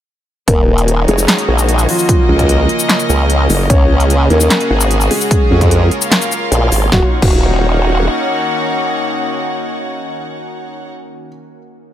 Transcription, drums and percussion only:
0.48 kick, closed hi-hat
0.78 closed hi-hat
0.88 closed hi-hat
1.08 closed hi-hat
1.18 shaker
1.28 snare, clap, closed hi-hat
1.38 closed hi-hat
1.59 shaker
1.69 closed hi-hat
1.79 shaker
1.89 open hi-hat
1.99 shaker
2.09 kick, closed hi-hat
2.39 kick, closed hi-hat
2.49 closed hi-hat
2.69 closed hi-hat
2.79 shaker
2.89 snare, clap, closed hi-hat
3.00 closed hi-hat, shaker
3.10 shaker
3.30 closed hi-hat
3.50 open hi-hat, shaker
3.70 kick, closed hi-hat
4.00 closed hi-hat
4.10 closed hi-hat
4.30 closed hi-hat
4.40 shaker
4.50 snare, clap, closed hi-hat
4.61 closed hi-hat
4.81 shaker
4.91 closed hi-hat
5.01 shaker
5.11 open hi-hat
5.21 shaker
5.31 kick, closed hi-hat
5.61 kick, closed hi-hat
5.71 closed hi-hat
5.91 closed hi-hat
6.02 shaker
6.12 snare, clap, closed hi-hat
6.22 closed hi-hat, shaker
6.32 shaker
6.52 closed hi-hat
6.72 open hi-hat, shaker
6.92 kick, snare
7.22 kick, crash

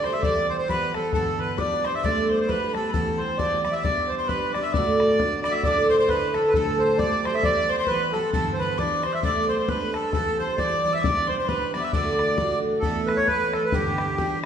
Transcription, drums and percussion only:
0.04 bodhran
0.23 bodhran
0.69 bodhran
0.94 bodhran
1.13 bodhran
1.58 bodhran
1.85 bodhran
2.04 bodhran
2.49 bodhran
2.75 bodhran
2.94 bodhran
3.39 bodhran
3.65 bodhran
3.84 bodhran
4.29 bodhran
4.54 bodhran
4.74 bodhran
5.00 bodhran
5.20 bodhran
5.44 bodhran
5.63 bodhran
6.09 bodhran
6.34 bodhran
6.54 bodhran
6.99 bodhran
7.25 bodhran
7.43 bodhran
7.87 bodhran
8.14 bodhran
8.33 bodhran
8.79 bodhran
9.03 bodhran
9.23 bodhran
9.68 bodhran
9.94 bodhran
10.13 bodhran
10.58 bodhran
11.04 bodhran
11.49 bodhran
11.74 bodhran
11.93 bodhran
12.19 bodhran
12.38 bodhran
12.83 bodhran
13.09 bodhran
13.18 bodhran
13.28 bodhran
13.53 bodhran
13.72 bodhran
13.98 bodhran
14.09 bodhran
14.18 bodhran

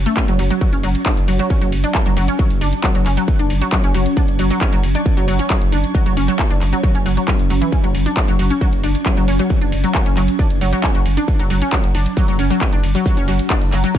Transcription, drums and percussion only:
0.06 closed hi-hat, ride
0.17 kick, clap, closed hi-hat, ride
0.28 closed hi-hat, ride
0.39 open hi-hat, ride
0.50 closed hi-hat, ride
0.61 kick, closed hi-hat, ride
0.73 closed hi-hat, ride
0.83 open hi-hat, ride
0.95 closed hi-hat, ride
1.06 kick, clap, closed hi-hat, ride
1.17 closed hi-hat, ride
1.28 open hi-hat, ride
1.39 closed hi-hat, ride
1.50 kick, closed hi-hat, ride
1.62 closed hi-hat, ride
1.72 open hi-hat, ride
1.84 closed hi-hat, ride
1.95 kick, clap, closed hi-hat, ride
2.06 closed hi-hat, ride
2.17 open hi-hat, ride
2.28 closed hi-hat, ride
2.39 kick, closed hi-hat, ride
2.50 closed hi-hat, ride
2.61 open hi-hat, ride
2.73 closed hi-hat, ride
2.84 kick, clap, closed hi-hat, ride
2.95 closed hi-hat, ride
3.06 clap, open hi-hat, ride
3.17 closed hi-hat, ride
3.28 kick, closed hi-hat, ride
3.39 closed hi-hat, ride
3.50 open hi-hat, ride
3.61 closed hi-hat, ride
3.72 kick, clap, closed hi-hat, ride
3.84 closed hi-hat, ride
3.94 open hi-hat, ride
4.06 closed hi-hat, ride
4.17 kick, closed hi-hat, ride
4.28 closed hi-hat, ride
4.39 open hi-hat, ride
4.50 closed hi-hat, ride
4.61 kick, clap, closed hi-hat, ride
4.73 closed hi-hat, ride
4.84 open hi-hat, ride
4.95 closed hi-hat, ride
5.06 kick, closed hi-hat, ride
5.17 closed hi-hat, ride
5.28 open hi-hat, ride
5.39 closed hi-hat, ride
5.50 kick, clap, closed hi-hat, ride
5.62 closed hi-hat, ride
5.72 open hi-hat, ride
5.84 closed hi-hat, ride
5.95 kick, closed hi-hat, ride
6.06 closed hi-hat, ride
6.17 open hi-hat, ride
6.28 closed hi-hat, ride
6.39 kick, clap, closed hi-hat, ride
6.51 closed hi-hat, ride
6.61 clap, open hi-hat, ride
6.73 closed hi-hat, ride
6.83 kick, closed hi-hat, ride
6.95 closed hi-hat, ride
7.06 open hi-hat, ride
7.17 closed hi-hat, ride
7.28 kick, clap, closed hi-hat, ride
7.39 closed hi-hat, ride
7.50 open hi-hat, ride
7.62 closed hi-hat, ride
7.72 kick, closed hi-hat, ride
7.84 closed hi-hat, ride
7.95 open hi-hat, ride
8.06 closed hi-hat, ride
8.17 kick, clap, closed hi-hat, ride
8.28 closed hi-hat, ride
8.39 open hi-hat, ride
8.50 closed hi-hat, ride
8.61 kick, closed hi-hat, ride
8.73 closed hi-hat, ride
8.84 open hi-hat, ride
8.95 closed hi-hat, ride
9.06 kick, clap, closed hi-hat, ride
9.17 closed hi-hat, ride
9.28 open hi-hat, ride
9.39 closed hi-hat, ride
9.50 kick, closed hi-hat, ride
9.62 closed hi-hat, ride
9.72 open hi-hat, ride
9.84 closed hi-hat, ride
9.95 kick, clap, closed hi-hat, ride
10.06 closed hi-hat, ride
10.17 clap, open hi-hat, ride
10.28 closed hi-hat, ride
10.39 kick, closed hi-hat, ride
10.50 closed hi-hat, ride
10.61 open hi-hat, ride
10.73 closed hi-hat, ride
10.83 kick, clap, closed hi-hat, ride
10.95 closed hi-hat, ride
11.06 open hi-hat, ride
11.17 closed hi-hat, ride
11.28 kick, closed hi-hat, ride
11.39 closed hi-hat, ride
11.50 open hi-hat, ride
11.62 closed hi-hat, ride
11.72 kick, clap, closed hi-hat, ride
11.84 closed hi-hat, ride
11.95 open hi-hat, ride
12.06 closed hi-hat, ride
12.17 kick, closed hi-hat, ride
12.28 closed hi-hat, ride
12.39 open hi-hat, ride
12.50 closed hi-hat, ride
12.61 kick, clap, closed hi-hat, ride
12.73 closed hi-hat, ride
12.84 open hi-hat, ride
12.95 closed hi-hat, ride
13.06 kick, closed hi-hat, ride
13.17 closed hi-hat, ride
13.28 open hi-hat, ride
13.39 closed hi-hat, ride
13.50 kick, clap, closed hi-hat, ride
13.61 closed hi-hat, ride
13.72 clap, open hi-hat, ride
13.84 closed hi-hat, ride
13.95 kick, closed hi-hat, ride

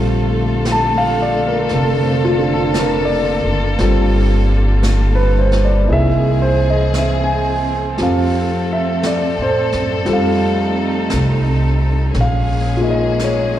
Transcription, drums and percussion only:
0.65 brush sweep, snare, hi-hat pedal
1.69 brush sweep, snare
2.74 brush sweep, snare, hi-hat pedal
3.79 brush sweep, snare
4.83 brush sweep, snare, hi-hat pedal
5.52 snare
5.87 brush sweep
6.94 brush sweep, snare, hi-hat pedal
7.98 brush sweep, snare
9.03 brush sweep, snare, hi-hat pedal
9.72 snare
10.06 brush sweep, snare
11.10 brush sweep, snare, hi-hat pedal
12.14 brush sweep, snare
13.19 brush sweep, snare, hi-hat pedal

